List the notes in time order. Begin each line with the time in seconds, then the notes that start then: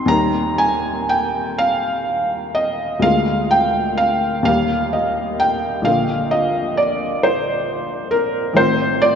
Already playing: C4 D#4 G4 G5 G#5 C6
0.06 D#2 G3 A#3 A#5
0.10 D#4
0.58 G#5
1.09 G5
1.58 F5
2.55 D#5
2.99 D2 G#3 A#3 F5
3.03 F4
3.51 G5
3.98 F5
4.43 D#2 G3 A#3 G4 F5
4.93 D#5
5.40 G5
5.82 A#1 D3 A#3 F4 F5
6.31 D#5
6.77 D5
7.23 C5
8.11 A#4
8.53 A1 D#3 C4 F4 C5
9.02 D5